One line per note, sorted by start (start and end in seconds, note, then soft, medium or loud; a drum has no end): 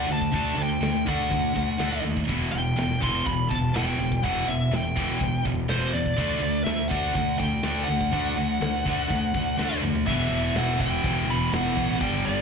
0.09 0.32 D2 medium
0.09 0.31 D3 medium
0.09 0.31 A3 medium
0.09 0.61 A5 loud
0.22 kick medium
0.33 0.56 D2 medium
0.33 0.56 D3 medium
0.33 0.56 A3 medium
0.33 0.57 D4 loud
0.33 kick loud
0.33 open hi-hat medium
0.57 0.80 D2 medium
0.57 0.80 D3 medium
0.57 0.80 A3 medium
0.62 1.08 G5 loud
0.81 1.04 D2 medium
0.81 1.04 D3 medium
0.81 1.04 A3 medium
0.81 snare loud
0.81 open hi-hat medium
0.95 snare soft
1.06 1.30 D2 medium
1.06 1.29 D3 medium
1.06 1.30 A3 loud
1.06 1.30 D4 loud
1.06 2.01 F#5 medium
1.06 kick medium
1.31 1.54 D2 medium
1.31 1.53 D3 medium
1.31 1.53 A3 medium
1.31 kick loud
1.31 open hi-hat medium
1.56 1.79 D2 medium
1.56 1.77 D3 medium
1.56 1.78 A3 medium
1.56 kick medium
1.79 2.03 D2 medium
1.79 2.02 D3 medium
1.79 2.03 A3 medium
1.79 2.03 D4 medium
1.79 snare loud
1.79 open hi-hat medium
2.04 2.27 D#2 medium
2.04 2.26 D3 medium
2.04 2.26 A3 medium
2.17 kick medium
2.28 2.52 E1 medium
2.28 2.51 E2 medium
2.28 2.51 B2 medium
2.28 2.51 E3 medium
2.28 kick loud
2.28 open hi-hat medium
2.52 2.76 E1 medium
2.52 2.75 E2 medium
2.52 2.75 B2 medium
2.52 2.98 G5 loud
2.76 3.00 E1 medium
2.76 2.98 E2 medium
2.76 2.99 B2 medium
2.76 snare loud
2.76 open hi-hat medium
2.91 snare soft
3.00 3.25 E1 medium
3.00 3.24 E2 medium
3.00 3.24 B2 loud
3.00 3.24 E3 loud
3.00 3.25 C6 loud
3.00 kick medium
3.25 3.49 E1 medium
3.25 3.48 E2 medium
3.25 3.48 B2 medium
3.25 3.49 B5 loud
3.25 kick loud
3.25 open hi-hat medium
3.49 3.74 E1 medium
3.49 3.72 E2 medium
3.49 3.73 B2 medium
3.49 3.72 A5 medium
3.49 kick medium
3.74 3.98 E1 medium
3.74 3.97 E2 medium
3.74 3.98 B2 medium
3.74 3.98 E3 loud
3.74 4.23 G5 medium
3.74 snare loud
3.74 open hi-hat medium
3.98 4.22 E1 medium
3.98 4.21 E2 medium
3.98 4.21 B2 medium
4.12 kick medium
4.23 4.46 E1 medium
4.23 4.46 E2 medium
4.23 4.46 B2 medium
4.23 4.47 E3 medium
4.23 4.49 F#5 medium
4.23 kick loud
4.23 open hi-hat medium
4.47 4.70 E1 medium
4.47 4.69 E2 medium
4.47 4.70 B2 medium
4.47 4.73 E5 medium
4.71 4.94 E1 medium
4.71 4.94 E2 medium
4.71 4.94 B2 medium
4.71 snare loud
4.71 open hi-hat medium
4.75 5.43 G5 medium
4.96 5.20 E1 medium
4.96 5.19 E2 medium
4.96 5.19 B2 loud
4.96 5.19 E3 loud
4.96 kick medium
5.20 5.44 E1 medium
5.20 5.42 E2 medium
5.20 5.42 B2 medium
5.20 kick loud
5.20 open hi-hat medium
5.45 5.68 E1 medium
5.45 5.67 E2 medium
5.45 5.67 B2 medium
5.45 kick medium
5.69 5.92 E1 medium
5.69 5.92 E2 medium
5.69 5.92 B2 medium
5.69 5.93 E3 loud
5.69 5.92 C5 medium
5.69 snare loud
5.69 open hi-hat medium
5.93 6.16 E2 medium
5.93 6.17 E2 medium
5.93 6.16 B2 medium
5.93 6.63 D5 loud
6.06 kick medium
6.17 6.41 D2 medium
6.17 6.40 D3 medium
6.17 6.40 A3 medium
6.17 6.41 D4 medium
6.17 kick loud
6.17 open hi-hat medium
6.42 6.65 D2 medium
6.42 6.64 D3 medium
6.42 6.64 A3 medium
6.64 6.90 D2 medium
6.64 6.89 D3 medium
6.64 6.89 A3 medium
6.64 6.91 E5 loud
6.64 snare loud
6.64 open hi-hat medium
6.80 snare soft
6.88 7.14 D3 medium
6.88 7.14 A3 loud
6.88 7.14 D4 loud
6.88 7.38 F#5 loud
6.88 kick medium
6.92 7.15 D2 medium
7.15 7.39 D2 medium
7.15 7.37 D3 medium
7.15 7.37 A3 medium
7.15 kick loud
7.15 open hi-hat medium
7.39 7.63 D2 medium
7.39 7.62 D3 medium
7.39 7.62 A3 medium
7.39 7.84 G5 loud
7.39 kick medium
7.63 7.87 D2 medium
7.63 7.87 D3 medium
7.63 7.87 A3 medium
7.63 7.87 D4 loud
7.63 snare loud
7.63 open hi-hat medium
7.85 8.10 D3 medium
7.85 8.10 A3 medium
7.85 9.77 F#5 loud
7.90 8.12 D2 medium
8.01 kick medium
8.13 8.36 D2 medium
8.13 8.36 D3 medium
8.13 8.36 A3 medium
8.13 8.36 D4 medium
8.13 kick loud
8.13 open hi-hat medium
8.38 8.60 D2 medium
8.38 8.59 D3 medium
8.38 8.59 A3 medium
8.61 8.84 D2 medium
8.61 8.83 D3 medium
8.61 8.84 A3 medium
8.61 snare loud
8.61 open hi-hat medium
8.86 9.09 D2 medium
8.86 9.09 D3 medium
8.86 9.09 A3 medium
8.86 9.09 D4 loud
8.86 kick medium
9.10 9.33 D2 medium
9.10 9.32 D3 medium
9.10 9.32 A3 medium
9.10 kick loud
9.10 open hi-hat medium
9.34 9.58 D2 medium
9.34 9.56 D3 medium
9.34 9.56 A3 medium
9.34 kick medium
9.58 9.82 D2 medium
9.58 9.81 D3 medium
9.58 9.81 A3 medium
9.58 9.82 D4 medium
9.58 snare medium
9.82 10.06 D2 medium
9.82 10.04 D3 medium
9.82 10.04 A3 medium
9.82 mid tom medium
9.95 floor tom medium
10.06 10.30 E1 loud
10.06 11.01 E2 medium
10.06 11.02 B2 loud
10.06 11.03 E3 medium
10.06 10.57 E5 medium
10.06 kick loud
10.06 crash loud
10.06 crash medium
10.31 10.54 E1 medium
10.31 crash medium
10.55 10.78 E1 loud
10.55 10.79 F#5 loud
10.55 snare loud
10.55 crash medium
10.79 11.03 E1 medium
10.79 11.98 E2 medium
10.79 11.99 B2 medium
10.79 11.99 E3 loud
10.79 11.30 G5 loud
10.79 kick medium
10.79 crash medium
11.02 11.27 E1 medium
11.02 11.98 E2 medium
11.02 11.99 B2 medium
11.02 12.00 E3 medium
11.02 kick loud
11.02 crash medium
11.27 11.50 E1 medium
11.27 11.52 B5 loud
11.27 crash medium
11.53 11.75 E1 loud
11.53 11.97 F#5 loud
11.53 snare loud
11.53 crash medium
11.77 12.00 A1 medium
11.77 kick medium
11.77 crash medium
11.99 12.24 G1 medium
11.99 12.41 G2 medium
11.99 12.41 D3 loud
11.99 12.41 G3 loud
11.99 12.23 G5 loud
11.99 kick loud
11.99 crash medium
12.25 12.41 G1 medium
12.25 12.41 D5 medium
12.25 crash medium